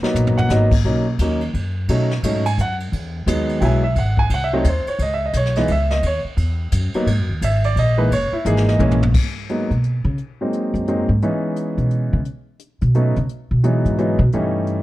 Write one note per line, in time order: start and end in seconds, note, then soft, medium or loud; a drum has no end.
0.01 0.48 F#3 medium
0.01 0.48 A#3 medium
0.01 0.48 B3 medium
0.01 0.48 D#4 medium
0.01 muted upright bass stroke soft
0.01 snare medium
0.14 0.48 A#1 loud
0.14 floor tom medium
0.14 hi-hat pedal medium
0.27 floor tom medium
0.38 0.50 F#5 loud
0.38 floor tom loud
0.49 0.83 G#1 loud
0.49 0.70 F#3 medium
0.49 0.70 A#3 medium
0.49 0.70 B3 medium
0.49 0.70 D#4 medium
0.49 0.72 D#5 medium
0.49 snare medium
0.49 hi-hat pedal medium
0.72 kick medium
0.72 crash medium
0.84 1.18 B1 medium
0.84 1.05 F#3 medium
0.84 1.05 A#3 medium
0.84 1.05 C#4 medium
0.84 1.05 D#4 medium
0.84 kick soft
1.19 1.53 D#2 medium
1.19 1.40 F#3 medium
1.19 1.40 A#3 medium
1.19 1.40 C#4 medium
1.19 1.40 D#4 medium
1.19 kick soft
1.19 hi-hat pedal medium
1.19 ride medium
1.41 ride soft
1.53 1.87 F#2 medium
1.53 kick soft
1.53 ride medium
1.88 2.22 B2 medium
1.88 2.09 F#3 medium
1.88 2.09 A3 medium
1.88 2.09 C#4 medium
1.88 2.09 D#4 medium
1.88 kick soft
1.88 ride medium
2.11 snare soft
2.23 2.57 G#2 medium
2.23 2.44 F#3 medium
2.23 2.43 A3 medium
2.23 2.44 C#4 medium
2.23 2.44 D#4 medium
2.23 kick soft
2.23 hi-hat pedal soft
2.23 ride medium
2.46 2.58 G#5 loud
2.46 ride medium
2.58 2.91 F#2 medium
2.58 2.73 F#5 medium
2.58 kick soft
2.58 hi-hat pedal soft
2.80 ride soft
2.92 3.26 E2 medium
2.92 kick soft
2.92 ride medium
3.26 3.60 D#2 medium
3.26 3.60 F#3 medium
3.26 3.61 G#3 medium
3.26 3.61 B3 medium
3.26 3.60 D#4 medium
3.26 kick soft
3.26 hi-hat pedal medium
3.26 ride medium
3.49 ride soft
3.60 3.95 B1 medium
3.60 3.81 F#3 medium
3.60 3.82 G#3 medium
3.60 3.82 B3 medium
3.60 3.82 E4 medium
3.60 3.63 G5 medium
3.60 kick soft
3.60 ride medium
3.65 3.85 G#5 medium
3.83 3.96 E5 medium
3.95 4.29 G#1 medium
3.95 4.19 F#5 medium
3.95 kick soft
3.95 ride medium
4.17 4.31 G#5 loud
4.17 kick medium
4.30 4.64 C2 medium
4.30 kick soft
4.30 ride medium
4.34 4.44 F#5 medium
4.44 4.54 E5 medium
4.53 4.64 F#3 medium
4.53 4.64 A3 medium
4.53 4.64 C4 medium
4.53 4.64 D#4 medium
4.53 4.67 C#5 medium
4.64 4.85 D#2 medium
4.64 kick soft
4.64 hi-hat pedal medium
4.64 ride medium
4.69 4.88 C5 medium
4.86 5.00 C#5 medium
4.86 muted upright bass stroke soft
4.86 ride soft
4.99 5.33 C#2 medium
4.99 5.12 D#5 medium
4.99 kick soft
4.99 ride medium
5.14 5.24 E5 medium
5.26 5.35 D#5 medium
5.33 5.67 B1 medium
5.33 5.57 C#5 medium
5.33 kick soft
5.33 hi-hat pedal medium
5.33 ride medium
5.45 snare soft
5.55 5.68 E3 medium
5.55 5.68 G#3 medium
5.55 5.68 B3 medium
5.55 5.68 D#4 medium
5.55 5.69 D#5 medium
5.55 snare soft
5.55 ride soft
5.68 6.02 C#2 medium
5.68 5.92 E5 medium
5.68 kick soft
5.68 ride medium
5.91 6.03 D#5 medium
5.91 snare medium
6.03 6.23 D#2 medium
6.03 6.19 C#5 medium
6.03 kick soft
6.03 ride medium
6.24 muted upright bass stroke soft
6.37 6.71 E2 loud
6.37 kick soft
6.37 ride medium
6.72 6.93 F#2 loud
6.72 kick soft
6.72 hi-hat pedal medium
6.72 ride medium
6.94 7.06 F#3 medium
6.94 7.06 A#3 medium
6.94 7.06 B3 medium
6.94 7.07 D#4 medium
6.94 muted upright bass stroke soft
6.94 ride soft
7.06 7.18 G#2 medium
7.06 kick soft
7.06 ride medium
7.18 7.29 F#2 medium
7.29 7.40 D#2 medium
7.41 7.75 G#1 medium
7.41 7.64 E5 medium
7.41 kick soft
7.41 hi-hat pedal medium
7.41 ride medium
7.64 7.76 D5 medium
7.64 ride soft
7.76 8.10 A#1 medium
7.76 7.99 D#5 loud
7.76 kick soft
7.76 ride medium
7.97 8.09 E3 medium
7.97 8.09 G#3 medium
7.97 8.09 A#3 medium
7.97 8.10 D#4 medium
7.97 8.10 B4 medium
8.11 8.31 F#1 medium
8.11 8.33 C#5 loud
8.11 kick soft
8.11 ride medium
8.32 8.45 E4 medium
8.32 muted upright bass stroke soft
8.45 8.79 G#1 medium
8.45 8.78 E3 medium
8.45 8.78 G#3 medium
8.45 8.78 A#3 medium
8.45 8.79 D#4 medium
8.45 8.67 G#4 medium
8.45 hi-hat pedal medium
8.57 snare medium
8.69 9.06 D#5 medium
8.69 snare medium
8.79 9.13 A#1 loud
8.79 8.99 E3 medium
8.79 8.99 G#3 medium
8.79 8.99 A#3 medium
8.79 9.00 C#4 medium
8.79 high tom medium
8.91 floor tom medium
9.03 floor tom loud
9.14 kick medium
9.14 crash medium
9.49 9.69 F#3 medium
9.49 9.69 G#3 soft
9.49 9.69 A#3 soft
9.49 9.69 B3 soft
9.49 9.69 D#4 medium
9.49 closed hi-hat soft
9.71 10.03 B2 medium
9.71 closed hi-hat soft
9.84 closed hi-hat soft
10.05 10.17 C#3 loud
10.18 closed hi-hat soft
10.41 10.85 F#3 soft
10.41 10.85 G#3 soft
10.41 10.85 A#3 soft
10.41 10.85 C4 soft
10.41 10.85 D#4 medium
10.53 closed hi-hat soft
10.74 11.06 F#2 medium
10.74 closed hi-hat soft
10.88 11.07 F#3 medium
10.88 11.07 G#3 medium
10.88 11.07 A#3 medium
10.88 11.07 C4 soft
10.88 11.08 D#4 medium
10.88 closed hi-hat soft
11.09 11.21 G#2 medium
11.22 12.18 E3 medium
11.22 12.18 G#3 soft
11.22 12.18 B3 medium
11.22 12.18 C#4 medium
11.22 12.18 D#4 medium
11.22 closed hi-hat soft
11.56 closed hi-hat soft
11.78 12.10 B2 medium
11.78 closed hi-hat soft
11.91 closed hi-hat soft
12.13 12.25 C#3 medium
12.25 closed hi-hat soft
12.59 closed hi-hat medium
12.81 13.14 B2 medium
12.81 closed hi-hat soft
12.94 13.14 F#3 medium
12.94 13.14 A3 medium
12.94 13.14 B3 medium
12.94 13.14 C#4 medium
12.94 13.15 D#4 medium
12.94 closed hi-hat soft
13.16 13.24 C#3 medium
13.16 closed hi-hat soft
13.29 closed hi-hat soft
13.51 13.83 B2 medium
13.64 13.97 E3 medium
13.64 13.97 F#3 medium
13.64 13.97 G#3 medium
13.64 13.97 B3 medium
13.64 13.97 D#4 medium
13.64 closed hi-hat soft
13.85 14.17 G#2 medium
13.85 closed hi-hat soft
13.98 14.18 E3 medium
13.98 14.18 F#3 medium
13.98 14.18 G#3 medium
13.98 14.18 B3 medium
13.98 14.18 D#4 medium
13.98 closed hi-hat soft
14.19 14.32 B2 loud
14.32 14.82 E3 medium
14.32 14.82 G3 medium
14.32 14.82 A3 medium
14.32 14.82 C#4 medium
14.32 14.82 D#4 medium
14.32 closed hi-hat soft
14.67 closed hi-hat soft